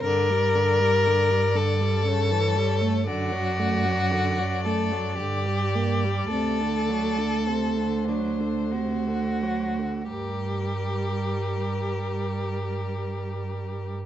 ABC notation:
X:1
M:3/4
L:1/16
Q:1/4=53
K:Gm
V:1 name="Violin"
d8 ^c4 | d12- | d4 c8 | B12 |]
V:2 name="Violin"
B6 A6 | ^F6 A2 G4 | A6 D2 ^F4 | G12 |]
V:3 name="Viola" clef=bass
D, G, D, G, D, G, D, G, ^C, =E, G, A, | D, ^F, A, F, D, F, A, F, D, G, B, G, | C, D, ^F, D, C, D, F, D, C, D, F, D, | G,12 |]
V:4 name="Cello" clef=bass
G,,12 | ^F,,8 G,,4 | D,,12 | G,,12 |]